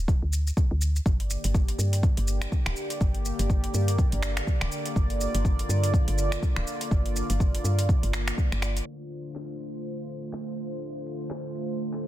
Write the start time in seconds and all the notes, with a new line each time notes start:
Already playing: D1
0.08 kick, shaker
0.22 D2
0.33 shaker
0.47 shaker
0.57 kick, shaker
0.71 D2
0.81 shaker
0.96 shaker
1.06 G1 D3 A#3 G4 D5, kick, shaker
1.20 closed hi-hat
1.30 shaker
1.44 G1, closed hi-hat, shaker
1.54 kick, shaker
1.68 closed hi-hat
1.79 G2, shaker
1.93 closed hi-hat, shaker
2.03 kick, shaker
2.17 G1, closed hi-hat
2.28 shaker
2.42 finger snap, closed hi-hat, shaker
2.52 kick, shaker
2.66 D1, finger snap
2.76 shaker
2.90 closed hi-hat, shaker
3.01 G1, kick, shaker
3.14 closed hi-hat
3.25 shaker
3.39 G1, closed hi-hat, shaker
3.50 kick, shaker
3.64 closed hi-hat
3.74 G2, shaker
3.88 closed hi-hat, shaker
3.98 kick, shaker
4.12 G1, closed hi-hat
4.22 finger snap, shaker
4.37 finger snap, closed hi-hat, shaker
4.47 kick, shaker
4.61 D1, finger snap
4.72 shaker
4.86 closed hi-hat, shaker
4.96 G1 F4, kick, shaker
5.10 closed hi-hat
5.21 shaker
5.35 G1, closed hi-hat, shaker
5.45 kick, shaker
5.59 closed hi-hat
5.69 G2, shaker
5.84 closed hi-hat, shaker
5.94 kick, shaker
6.08 G1, closed hi-hat
6.18 shaker
6.32 finger snap, closed hi-hat, shaker
6.42 kick, shaker
6.56 D1, finger snap
6.67 shaker
6.81 closed hi-hat, shaker
6.91 G1, kick, shaker
7.06 closed hi-hat
7.16 shaker
7.30 G1, closed hi-hat, shaker
7.40 kick, shaker
7.55 closed hi-hat
7.64 G2, shaker
7.79 closed hi-hat, shaker
7.89 kick, shaker
8.03 G1, closed hi-hat
8.13 finger snap, shaker
8.28 finger snap, closed hi-hat, shaker
8.38 kick, shaker
8.52 G1, finger snap, closed hi-hat
8.62 finger snap, shaker
8.77 closed hi-hat, shaker
8.86 D3 A3 F4 C5, shaker
9.12 shaker
9.26 shaker
9.35 clap
9.60 shaker
9.74 shaker
9.84 shaker
10.09 shaker
10.23 shaker
10.33 clap
10.58 shaker
10.72 shaker
10.82 shaker
11.06 shaker
11.21 shaker
11.30 clap
11.55 shaker
11.69 shaker
11.79 shaker
11.93 clap
12.04 shaker